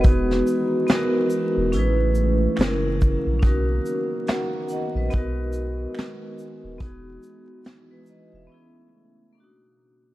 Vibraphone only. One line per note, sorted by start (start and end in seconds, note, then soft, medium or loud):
0.00 0.56 B3 medium
0.00 0.58 D#4 medium
0.00 0.28 B4 medium
0.06 0.59 F#4 medium
0.06 0.60 G#4 medium
0.87 1.72 B3 medium
0.87 1.74 D#4 medium
0.91 1.75 F#4 medium
0.91 1.76 A#4 medium
1.72 2.44 C#4 medium
1.72 2.45 E4 medium
1.77 2.46 G#4 medium
1.77 2.47 B4 medium
2.56 3.28 C#4 medium
2.56 3.29 E4 medium
2.61 3.30 G#4 medium
2.61 3.31 A#4 loud
3.40 3.95 C#4 medium
3.40 3.96 D#4 medium
3.44 3.97 F#4 medium
3.44 3.98 A#4 medium
4.28 4.68 F#5 medium
4.28 4.68 A#5 medium
4.70 4.94 D#5 medium
4.70 4.94 F#5 medium
4.96 5.36 B4 medium
4.96 5.36 D#5 medium
5.10 6.48 B3 medium
5.10 6.49 D#4 medium
5.15 6.50 F#4 medium
5.15 6.51 A#4 medium
6.78 7.33 B3 medium
6.78 7.34 D#4 medium
6.83 7.35 F#4 medium
6.83 7.37 G#4 medium
7.66 7.90 E4 medium
7.66 7.89 G#4 medium
7.91 8.07 G#4 medium
7.91 8.07 B4 medium
8.10 8.33 B4 medium
8.10 8.33 D#5 medium
8.35 8.74 E5 medium
8.47 9.19 B3 medium
8.47 9.20 C#4 medium
8.52 9.22 E4 medium
8.52 9.23 G#4 loud
9.33 10.04 A#3 medium
9.33 10.05 C#4 medium
9.38 9.44 D4 medium
9.38 10.08 F#4 medium
9.44 10.10 D#4 medium